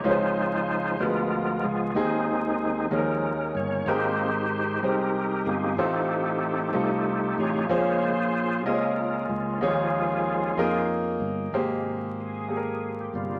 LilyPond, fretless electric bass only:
\new Staff \with { instrumentName = "Fretless electric bass" } { \clef bass \time 6/8 \key aes \major \tempo 4. = 63 des,4. d,4 des,8 | ees,4. ees,4 g,,8 | aes,,4. c,4 g,,8 | a,,4. c,4 a,,8 |
bes,,4. des,4 des,8 | ees,4. f,4 g,,8 | aes,,2~ aes,,8 g,,8 | }